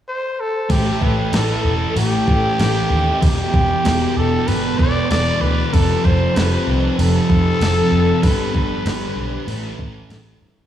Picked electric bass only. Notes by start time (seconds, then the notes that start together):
0.70 A1
1.02 A1
1.33 A1
1.65 E1
1.96 A1
2.28 A2
2.59 A1
2.90 D#2
3.23 E1
3.54 E1
3.86 E1
4.17 E1
4.48 G1
4.79 E1
5.11 E1
5.42 D2
5.74 F1
6.05 F1
6.36 F1
6.67 C2
6.99 F1
7.30 F2
7.60 F1
7.92 F1
8.23 G1
8.55 G1
8.85 G1
9.16 B1
9.47 A1
9.79 A1
10.10 A1
10.41 G2